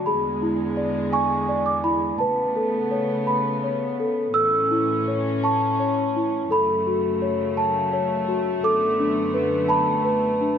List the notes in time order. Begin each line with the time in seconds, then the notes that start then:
0.06 E2 D3 G#3 G#4 B5
0.42 E4
0.77 D5
1.13 G#5 C#6
1.49 D5
1.66 D6
1.84 E4 B5
2.18 C#3 A3 B3 B4 A5
2.56 A4
2.91 C#5
3.27 B5
3.64 C#5
4.00 A4
4.34 A2 E3 C#4 A4 E6
4.71 E4
5.08 C#5
5.44 A5 C#6
5.80 C#5
6.16 E4
6.51 F#2 C#3 A3 A4 B5
6.87 F#4
7.22 C#5
7.57 A5
7.93 C#5
8.28 F#4
8.62 F#2 D3 B3 A4 D6
8.99 D4
9.34 B4
9.68 A5 B5
10.05 B4
10.41 D4